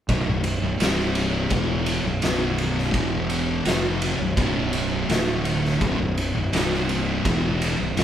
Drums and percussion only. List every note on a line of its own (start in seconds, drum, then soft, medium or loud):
0.09 kick loud
0.09 ride medium
0.44 ride medium
0.80 snare loud
0.80 ride loud
0.99 snare soft
1.15 ride medium
1.50 kick loud
1.50 ride loud
1.86 ride medium
2.22 snare loud
2.22 ride loud
2.58 ride medium
2.78 snare soft
2.94 kick loud
2.94 ride medium
3.30 ride medium
3.65 snare loud
3.65 ride loud
4.02 ride medium
4.37 kick loud
4.37 ride loud
4.73 ride medium
5.10 snare loud
5.10 ride loud
5.45 ride medium
5.65 snare soft
5.81 kick loud
5.81 ride medium
6.18 ride medium
6.53 snare loud
6.53 ride loud
6.74 snare soft
6.89 ride medium
7.25 kick loud
7.25 ride loud
7.62 ride medium
7.97 snare loud
7.97 ride loud